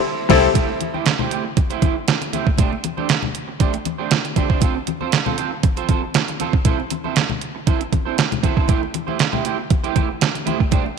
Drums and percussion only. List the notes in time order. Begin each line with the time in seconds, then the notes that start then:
0.30 kick, snare, crash
0.54 kick, closed hi-hat, low conga
0.81 closed hi-hat, high conga
0.94 high conga
1.06 snare, clap, closed hi-hat, muted conga
1.19 muted conga, low conga
1.31 closed hi-hat
1.57 kick, closed hi-hat, muted conga, high conga
1.70 closed hi-hat, muted conga
1.82 kick, closed hi-hat, high conga
2.08 snare, clap, closed hi-hat
2.22 closed hi-hat, muted conga
2.33 closed hi-hat, high conga
2.47 kick
2.58 kick, closed hi-hat, muted conga, low conga
2.73 muted conga
2.84 closed hi-hat, high conga
2.98 high conga
3.09 snare, clap, closed hi-hat
3.23 muted conga, low conga
3.35 closed hi-hat
3.60 kick, closed hi-hat, muted conga, high conga
3.73 closed hi-hat, muted conga
3.85 closed hi-hat, high conga
4.11 snare, clap, closed hi-hat, muted conga
4.25 closed hi-hat
4.36 kick, closed hi-hat, high conga
4.50 kick
4.61 kick, closed hi-hat, muted conga, low conga
4.87 closed hi-hat, high conga
5.01 high conga
5.12 snare, clap, closed hi-hat
5.26 muted conga, low conga
5.38 closed hi-hat
5.63 kick, closed hi-hat, muted conga, high conga
5.76 closed hi-hat, muted conga
5.89 kick, closed hi-hat, high conga
6.14 snare, clap, closed hi-hat
6.28 closed hi-hat, muted conga
6.40 closed hi-hat, high conga
6.53 kick
6.65 kick, closed hi-hat, muted conga, low conga
6.80 muted conga
6.90 closed hi-hat, high conga
7.04 high conga
7.16 snare, clap, closed hi-hat, muted conga
7.30 muted conga, low conga
7.42 closed hi-hat
7.67 kick, closed hi-hat, muted conga, high conga
7.81 closed hi-hat
7.93 kick, closed hi-hat, high conga
8.18 snare, clap, closed hi-hat, muted conga
8.32 closed hi-hat, muted conga, low conga
8.43 kick, closed hi-hat, high conga
8.57 kick
8.68 kick, closed hi-hat, muted conga, low conga
8.83 muted conga
8.94 closed hi-hat, high conga
9.08 high conga
9.19 snare, clap, closed hi-hat
9.33 muted conga, low conga
9.45 closed hi-hat
9.70 kick, closed hi-hat, muted conga, high conga
9.84 closed hi-hat, muted conga
9.96 kick, closed hi-hat, high conga
10.21 snare, clap, closed hi-hat
10.35 closed hi-hat, muted conga
10.47 closed hi-hat, high conga
10.60 kick
10.71 kick, closed hi-hat, muted conga, low conga
10.86 muted conga